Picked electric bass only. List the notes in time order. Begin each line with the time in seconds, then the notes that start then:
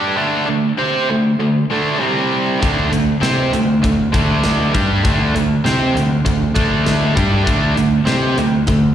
2.63 D2
2.92 D2
3.22 C3
3.53 D2
3.84 D2
4.14 D2
4.75 G2
5.05 D2
5.35 D2
5.65 C3
5.96 D2
6.26 D2
6.57 D2
7.17 G2
7.47 D2
7.78 D2
8.08 C3
8.38 D2
8.68 D2